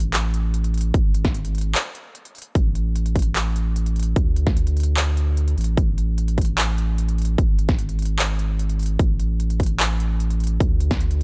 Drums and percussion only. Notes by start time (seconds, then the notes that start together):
0.00 closed hi-hat
0.14 clap, closed hi-hat
0.34 closed hi-hat
0.54 closed hi-hat
0.64 closed hi-hat
0.74 closed hi-hat
0.78 closed hi-hat
0.81 closed hi-hat
0.94 kick, closed hi-hat
1.14 closed hi-hat
1.25 kick, snare
1.34 closed hi-hat
1.45 closed hi-hat
1.55 closed hi-hat
1.58 closed hi-hat
1.61 closed hi-hat
1.75 clap, closed hi-hat
1.95 closed hi-hat
2.15 closed hi-hat
2.25 closed hi-hat
2.35 closed hi-hat, open hi-hat
2.42 closed hi-hat
2.55 kick, closed hi-hat
2.75 closed hi-hat
2.96 closed hi-hat
3.06 closed hi-hat
3.16 kick, closed hi-hat
3.19 closed hi-hat
3.22 closed hi-hat
3.36 clap, closed hi-hat
3.56 closed hi-hat
3.76 closed hi-hat
3.86 closed hi-hat
3.96 closed hi-hat
4.00 closed hi-hat
4.03 closed hi-hat
4.16 kick, closed hi-hat
4.36 closed hi-hat
4.47 kick, snare
4.57 closed hi-hat
4.67 closed hi-hat
4.77 closed hi-hat
4.80 closed hi-hat
4.83 closed hi-hat
4.97 clap, closed hi-hat
5.17 closed hi-hat
5.37 closed hi-hat
5.48 closed hi-hat
5.58 closed hi-hat
5.61 closed hi-hat
5.64 closed hi-hat
5.77 kick, closed hi-hat
5.98 closed hi-hat
6.18 closed hi-hat
6.28 closed hi-hat
6.38 kick, closed hi-hat
6.41 closed hi-hat
6.45 closed hi-hat
6.58 clap, closed hi-hat
6.78 closed hi-hat
6.98 closed hi-hat
7.09 closed hi-hat
7.18 closed hi-hat
7.22 closed hi-hat
7.25 closed hi-hat
7.38 kick, closed hi-hat
7.59 closed hi-hat
7.69 kick, snare
7.79 closed hi-hat
7.89 closed hi-hat
7.99 closed hi-hat
8.02 closed hi-hat
8.05 closed hi-hat
8.19 clap, closed hi-hat
8.39 closed hi-hat
8.59 closed hi-hat
8.70 closed hi-hat
8.79 closed hi-hat, open hi-hat
8.86 closed hi-hat
8.99 kick, closed hi-hat
9.20 closed hi-hat
9.40 closed hi-hat
9.50 closed hi-hat
9.60 kick, closed hi-hat
9.63 closed hi-hat
9.66 closed hi-hat
9.80 clap, closed hi-hat
10.00 closed hi-hat
10.20 closed hi-hat
10.30 closed hi-hat
10.40 closed hi-hat
10.44 closed hi-hat
10.47 closed hi-hat
10.60 kick, closed hi-hat
10.80 closed hi-hat
10.91 kick, snare
11.00 closed hi-hat
11.11 closed hi-hat